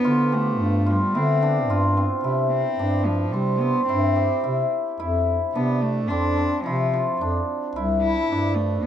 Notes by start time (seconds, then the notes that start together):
Already playing: B3 D4 E4 F#4
0.04 D3 F4
0.32 A3 G4
0.60 G2
0.86 G3 F4
1.14 D3 C4 E4
1.42 D4
1.69 G2 F4
1.97 C4
2.24 C3 E4
2.51 C4
2.79 G2 D4
3.06 F3
3.32 C3 G3 C4
3.59 B3 C4
3.87 G2 C4 E4
4.16 G4
4.44 C3 E4
4.99 F2 E4
5.55 C3 B3 D4
5.82 A3
6.08 F2 C4 D4
6.38 C4
6.64 C3 F3 E4
6.93 F4
7.21 F2 D4
7.76 C2 E4
8.02 E4
8.30 G2 D4
8.55 A3
8.83 B3